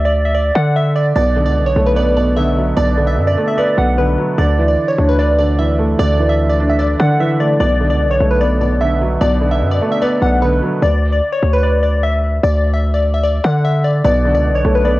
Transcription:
Already playing: 808-style bass D2
0.05 synth pluck D5
0.25 synth pluck E5
0.35 synth pluck D5
0.55 808-style bass D3, synth pluck F#5
0.76 synth pluck E5
0.96 synth pluck D5
1.16 808-style bass B1, felt piano B2, synth pluck D5
1.36 felt piano D3
1.46 808-style bass C#2, synth pluck D5
1.61 808-style bass B1
1.66 synth pluck C#5
1.76 808-style bass B1, felt piano A3
1.87 synth pluck B4
1.96 felt piano B3, synth pluck D5
2.17 felt piano B2, synth pluck D5
2.36 felt piano D3, synth pluck E5
2.57 felt piano F#3
2.77 808-style bass B1, felt piano B2, synth pluck D5
2.97 felt piano D3
3.07 synth pluck E5
3.17 808-style bass F#2
3.27 synth pluck D5
3.37 felt piano A3
3.48 synth pluck E5
3.58 felt piano B3, synth pluck D5
3.78 808-style bass B1, felt piano B2, synth pluck F#5
3.98 felt piano D3, synth pluck B4
4.18 felt piano F#3
4.38 808-style bass D2, felt piano D3, synth pluck D5
4.58 felt piano E3
4.68 synth pluck D5
4.88 synth pluck C#5
4.98 808-style bass D2, felt piano D4
5.09 synth pluck B4
5.19 synth pluck D5, felt piano D5
5.39 felt piano D3, synth pluck D5
5.59 felt piano E3, synth pluck E5
5.79 felt piano A3
5.99 808-style bass D2, felt piano D3, synth pluck D5
6.19 felt piano E3
6.29 synth pluck E5
6.49 synth pluck D5
6.60 felt piano D4
6.70 synth pluck E5
6.79 synth pluck D5, felt piano D5
6.99 808-style bass D3, felt piano D3, synth pluck F#5
7.20 felt piano E3, synth pluck E5
7.40 felt piano A3, synth pluck D5
7.60 808-style bass B1, felt piano B2, synth pluck D5
7.81 felt piano D3
7.90 808-style bass C#2, synth pluck D5
8.05 808-style bass B1
8.11 synth pluck C#5
8.21 808-style bass B1, felt piano A3
8.31 synth pluck B4
8.41 felt piano B3, synth pluck D5
8.61 felt piano B2, synth pluck D5
8.81 felt piano D3, synth pluck E5
9.01 felt piano F#3
9.21 808-style bass B1, felt piano B2, synth pluck D5
9.41 felt piano D3
9.51 synth pluck E5
9.61 808-style bass F#2
9.71 synth pluck D5
9.82 felt piano A3
9.92 synth pluck E5
10.02 felt piano B3, synth pluck D5
10.22 808-style bass B1, felt piano B2, synth pluck F#5
10.42 felt piano D3, synth pluck B4
10.62 felt piano F#3
10.82 808-style bass D2, synth pluck D5
11.12 synth pluck D5
11.32 synth pluck C#5
11.43 808-style bass D2
11.53 synth pluck B4
11.63 synth pluck D5
11.83 synth pluck D5
12.03 synth pluck E5
12.43 808-style bass D2, synth pluck D5
12.74 synth pluck E5
12.94 synth pluck D5
13.14 synth pluck E5
13.23 synth pluck D5
13.44 808-style bass D3, synth pluck F#5
13.65 synth pluck E5
13.84 synth pluck D5
14.04 808-style bass B1, felt piano B2, synth pluck D5
14.25 felt piano D3
14.35 808-style bass C#2, synth pluck D5
14.50 808-style bass B1
14.55 synth pluck C#5
14.65 808-style bass B1, felt piano A3
14.75 synth pluck B4
14.85 felt piano B3, synth pluck D5

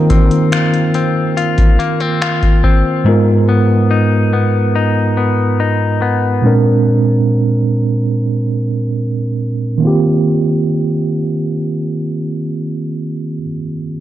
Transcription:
Already playing: tine electric piano D#3 A#3 C4 F4 A#4, clean electric guitar D#3 F4
0.10 clean electric guitar C4, kick, closed hi-hat
0.31 closed hi-hat
0.52 clean electric guitar F4, finger snap, closed hi-hat
0.74 closed hi-hat
0.94 clean electric guitar C4, closed hi-hat
1.37 clean electric guitar F4, closed hi-hat
1.58 kick, closed hi-hat
1.79 clean electric guitar A#3, closed hi-hat
2.00 clean electric guitar C4, closed hi-hat
2.22 clean electric guitar F4, finger snap, closed hi-hat
2.43 kick, closed hi-hat
2.64 clean electric guitar C4, kick
3.04 tine electric piano G#2 G#3 B3 F4, clean electric guitar G#2
3.09 tine electric piano A#4
3.49 clean electric guitar B3
3.91 clean electric guitar D#4
4.33 clean electric guitar B3
4.76 clean electric guitar D#4
5.17 clean electric guitar B3
5.60 clean electric guitar D#4
6.02 clean electric guitar B3
6.42 tine electric piano A#2 G#3 C4 D4
6.47 tine electric piano A#4
9.78 tine electric piano D#3 A#3
9.82 tine electric piano C4 F4
9.87 tine electric piano G4

